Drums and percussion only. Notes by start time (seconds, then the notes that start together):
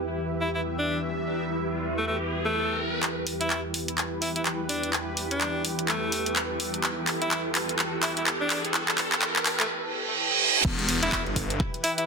3.03 clap, closed hi-hat
3.27 open hi-hat
3.41 closed hi-hat
3.50 clap, closed hi-hat
3.74 open hi-hat
3.88 closed hi-hat
3.98 clap, closed hi-hat
4.22 open hi-hat
4.36 closed hi-hat
4.46 clap, closed hi-hat
4.69 open hi-hat
4.83 closed hi-hat
4.93 clap, closed hi-hat
5.17 open hi-hat
5.31 closed hi-hat
5.41 clap, closed hi-hat
5.65 open hi-hat
5.79 closed hi-hat
5.88 clap, closed hi-hat
6.12 open hi-hat
6.26 closed hi-hat
6.36 clap, closed hi-hat
6.60 open hi-hat
6.74 closed hi-hat
6.84 clap, closed hi-hat
7.07 clap, open hi-hat
7.22 closed hi-hat
7.31 clap, closed hi-hat
7.55 clap, open hi-hat
7.69 closed hi-hat
7.79 clap, closed hi-hat
8.03 clap, open hi-hat
8.17 closed hi-hat
8.27 clap, closed hi-hat
8.50 clap, open hi-hat
8.65 closed hi-hat
8.74 clap, closed hi-hat
8.88 clap
8.98 clap, open hi-hat
9.12 clap, closed hi-hat
9.22 clap, closed hi-hat
9.36 clap
9.46 clap, open hi-hat
9.60 clap, closed hi-hat
10.65 kick, crash
10.79 closed hi-hat
10.89 open hi-hat
11.03 closed hi-hat
11.12 kick, clap
11.26 closed hi-hat
11.36 kick, open hi-hat
11.50 closed hi-hat
11.60 kick
11.74 closed hi-hat
11.84 open hi-hat
11.98 closed hi-hat